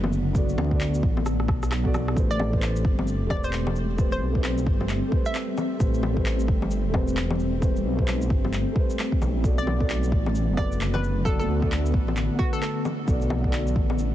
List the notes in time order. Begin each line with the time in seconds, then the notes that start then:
Already playing: F#1 D3 A3 B3 F#4 A4 B4 D5
0.04 low bongo
0.13 shaker
0.33 B3 F#4 A4 D5, kick, shaker
0.49 shaker
0.58 D2, low bongo
0.67 B3 F#4, kick
0.73 A4 D5
0.81 clap, shaker
0.94 shaker
1.03 A1, kick
1.17 low bongo
1.26 cross-stick, shaker
1.40 cross-stick
1.48 B1, kick, cross-stick
1.63 cross-stick, shaker
1.72 cross-stick, clap, shaker
1.83 B3 F#4 A4 D5, kick
1.94 cross-stick, low bongo, shaker
2.08 cross-stick
2.15 A1 G3 A3 C4 G4 B4 C5, kick, shaker
2.31 D5, shaker
2.39 low bongo
2.49 A3 G4, kick
2.55 B4 C5
2.62 clap, shaker
2.76 shaker
2.85 G1, kick
2.99 low bongo
3.08 shaker
3.22 E1
3.26 A3 G4, kick, low bongo
3.30 B4 C5 D5
3.44 C5, shaker
3.53 clap, shaker
3.67 low bongo
3.76 shaker
3.97 A3 G4 B4 C5, kick, shaker
4.12 C5, shaker
4.21 B1
4.31 A3 G4, kick
4.37 B4 C5
4.44 clap, shaker
4.58 shaker
4.67 G1, kick
4.81 low bongo
4.89 clap, shaker
5.08 A3 G4
5.12 B4 C5, kick
5.26 E5, shaker
5.35 clap, shaker
5.58 low bongo, shaker
5.77 A1 A3 G4 B4, kick, shaker
5.82 C5
5.94 shaker
6.03 low bongo
6.13 A3 G4, kick
6.18 B4 C5
6.26 clap, shaker
6.40 shaker
6.48 G1, kick
6.62 low bongo
6.71 shaker
6.85 E1 A3
6.92 G4 B4, kick, low bongo
6.97 C5
7.08 shaker
7.17 clap, shaker
7.30 low bongo
7.39 shaker
7.60 A3 G4 B4 C5, kick, shaker
7.76 shaker
7.85 B1
7.94 A3 G4
7.99 B4 C5, kick
8.08 clap, shaker
8.22 shaker
8.30 G1, kick
8.45 low bongo
8.53 clap, shaker
8.72 A3 G4, kick
8.77 B4 C5
8.90 shaker
8.99 clap, shaker
9.12 kick
9.22 B1, low bongo, shaker
9.36 A1
9.42 B1 D3 B3 F#4 A4, kick, shaker
9.46 D5
9.58 D5, shaker
9.67 low bongo
9.76 B3 F#4
9.80 A4 D5, kick
9.90 clap, shaker
10.03 shaker
10.12 A1, kick
10.26 low bongo
10.35 shaker
10.49 F#1
10.53 B3 F#4
10.57 A4 B4 D5, kick, low bongo
10.72 shaker
10.81 clap, shaker
10.94 B4, low bongo
11.04 shaker
11.24 B3 F#4 A4 D5, kick, shaker
11.39 A4, shaker
11.48 D2
11.58 B3 F#4
11.62 A4 D5, kick
11.72 clap, shaker
11.86 shaker
11.94 A1, kick
12.08 low bongo
12.17 clap, shaker
12.35 B3 F#4
12.39 A4 B4, kick
12.53 A4, shaker
12.62 A4, clap, shaker
12.85 low bongo, shaker
13.05 B1 B3 F#4 A4 D5, kick, shaker
13.21 shaker
13.30 low bongo
13.40 B3 F#4
13.44 A4 D5, kick
13.53 clap, shaker
13.67 shaker
13.76 A1, kick
13.90 low bongo
13.99 shaker